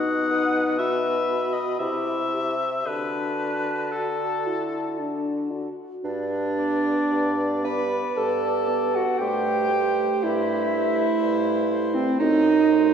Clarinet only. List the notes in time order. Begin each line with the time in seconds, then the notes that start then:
Already playing: F#4
0.32 B4
1.81 G4
2.34 G4
2.88 F#4
6.04 D4
7.64 B4
8.17 A4
8.96 F#4
9.21 G4
10.23 E4
11.95 C4
12.20 D#4